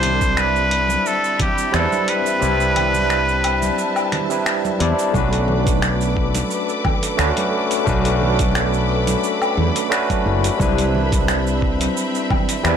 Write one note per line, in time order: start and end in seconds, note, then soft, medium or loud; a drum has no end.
0.00 0.96 C2 medium
0.00 1.68 G3 medium
0.00 1.69 C4 medium
0.00 5.11 C4 medium
0.00 1.70 D4 medium
0.00 1.70 E4 medium
0.00 0.40 C5 loud
0.00 1.71 D5 loud
0.00 5.11 E5 medium
0.00 2.39 B5 medium
0.00 closed hi-hat medium
0.00 low conga medium
0.21 kick loud
0.21 high conga medium
0.21 cabasa medium
0.37 1.09 B4 loud
0.37 finger snap medium
0.37 cabasa soft
0.56 cabasa soft
0.71 closed hi-hat medium
0.89 high conga medium
0.89 cabasa medium
1.06 1.40 A4 medium
1.06 cabasa soft
1.24 cabasa soft
1.40 1.76 G4 medium
1.40 kick loud
1.40 closed hi-hat medium
1.40 high conga soft
1.40 low conga medium
1.58 cabasa medium
1.72 1.85 E2 loud
1.72 2.37 G3 medium
1.72 2.37 C4 medium
1.72 2.38 D4 medium
1.72 2.38 E4 medium
1.72 2.11 A4 medium
1.72 2.39 B4 loud
1.72 finger snap loud
1.72 cabasa medium
1.92 high conga medium
1.92 cabasa soft
2.08 4.47 B4 loud
2.08 closed hi-hat medium
2.26 cabasa medium
2.39 3.69 C2 medium
2.39 4.25 G3 medium
2.39 4.26 C4 medium
2.39 4.27 D4 medium
2.39 5.12 A5 medium
2.39 high conga medium
2.39 cabasa medium
2.43 4.27 E4 medium
2.43 4.28 B4 loud
2.60 cabasa soft
2.76 closed hi-hat medium
2.76 low conga medium
2.76 low woodblock medium
2.94 high conga medium
2.94 cabasa medium
3.10 finger snap medium
3.10 cabasa soft
3.28 cabasa soft
3.44 closed hi-hat medium
3.44 low woodblock medium
3.62 high conga medium
3.62 cabasa medium
3.78 cabasa medium
3.96 cabasa soft
3.96 low woodblock medium
4.12 finger snap soft
4.12 closed hi-hat medium
4.12 high conga medium
4.12 low conga medium
4.29 4.76 G3 medium
4.29 4.76 C4 medium
4.29 4.77 D4 medium
4.29 4.77 E4 medium
4.29 4.77 B4 medium
4.29 cabasa medium
4.46 finger snap loud
4.46 cabasa medium
4.65 high conga medium
4.65 cabasa soft
4.79 4.92 E2 loud
4.79 4.94 G3 medium
4.79 4.94 C4 medium
4.79 4.94 D4 medium
4.79 4.95 E4 medium
4.79 4.95 D5 medium
4.79 closed hi-hat medium
4.99 cabasa medium
5.12 6.42 B1 medium
5.12 7.14 A3 medium
5.12 7.15 C#4 medium
5.12 7.15 D4 medium
5.12 10.56 A4 medium
5.12 10.56 B4 medium
5.12 12.77 B5 medium
5.12 10.56 D6 medium
5.12 kick loud
5.12 high conga medium
5.12 cabasa medium
5.16 7.16 F#4 medium
5.16 7.17 B4 loud
5.33 closed hi-hat soft
5.33 cabasa soft
5.48 low conga medium
5.67 kick loud
5.67 closed hi-hat medium
5.67 high conga medium
5.67 cabasa medium
5.82 finger snap loud
5.82 cabasa soft
6.01 cabasa soft
6.17 kick medium
6.35 closed hi-hat medium
6.35 high conga medium
6.35 cabasa medium
6.51 cabasa medium
6.69 cabasa soft
6.85 kick loud
6.85 high conga medium
6.85 low conga medium
6.85 low woodblock medium
7.03 closed hi-hat medium
7.03 cabasa medium
7.17 7.30 D2 loud
7.17 7.83 A3 medium
7.17 7.83 C#4 medium
7.17 7.83 D4 medium
7.17 7.84 F#4 medium
7.17 7.84 B4 loud
7.17 finger snap loud
7.17 cabasa medium
7.37 closed hi-hat soft
7.37 high conga medium
7.37 cabasa soft
7.71 closed hi-hat medium
7.71 cabasa medium
7.84 9.14 B1 medium
7.84 9.86 A3 medium
7.84 9.87 C#4 medium
7.84 9.88 D4 medium
7.84 kick loud
7.84 high conga loud
7.84 cabasa medium
7.88 9.88 F#4 medium
7.88 9.89 B4 loud
8.05 closed hi-hat soft
8.05 cabasa soft
8.22 low conga medium
8.39 kick loud
8.39 closed hi-hat medium
8.39 high conga medium
8.39 cabasa medium
8.55 finger snap loud
8.55 cabasa medium
8.73 cabasa soft
9.07 closed hi-hat medium
9.07 high conga medium
9.07 cabasa medium
9.24 cabasa medium
9.42 cabasa soft
9.42 low woodblock medium
9.57 9.69 E2 medium
9.57 high conga medium
9.57 low conga medium
9.76 closed hi-hat medium
9.76 cabasa medium
9.90 10.55 A3 loud
9.90 10.55 C#4 medium
9.90 10.56 D4 medium
9.90 10.56 F#4 medium
9.90 10.56 B4 loud
9.90 finger snap loud
9.90 cabasa medium
10.10 kick medium
10.10 closed hi-hat soft
10.10 high conga medium
10.10 cabasa soft
10.26 10.48 F#1 loud
10.44 closed hi-hat medium
10.44 cabasa medium
10.57 11.87 C2 loud
10.57 12.59 G3 medium
10.57 12.60 C4 medium
10.57 12.77 C4 medium
10.57 12.61 D4 medium
10.57 12.61 E4 medium
10.57 12.77 E5 medium
10.57 kick loud
10.57 high conga loud
10.57 cabasa medium
10.62 12.62 B4 loud
10.78 closed hi-hat soft
10.78 cabasa soft
10.95 low conga medium
11.12 kick loud
11.12 closed hi-hat medium
11.12 high conga medium
11.12 cabasa medium
11.28 finger snap medium
11.28 cabasa medium
11.47 cabasa soft
11.62 kick medium
11.81 closed hi-hat medium
11.81 high conga medium
11.81 cabasa medium
11.97 cabasa medium
12.15 cabasa soft
12.30 kick loud
12.30 high conga medium
12.30 low conga medium
12.30 low woodblock medium
12.49 closed hi-hat medium
12.49 cabasa medium
12.63 12.76 E2 loud
12.63 12.77 G3 loud
12.63 12.77 C4 medium
12.63 12.77 D4 medium
12.63 12.77 E4 medium
12.63 12.77 B4 loud
12.63 finger snap loud
12.63 cabasa medium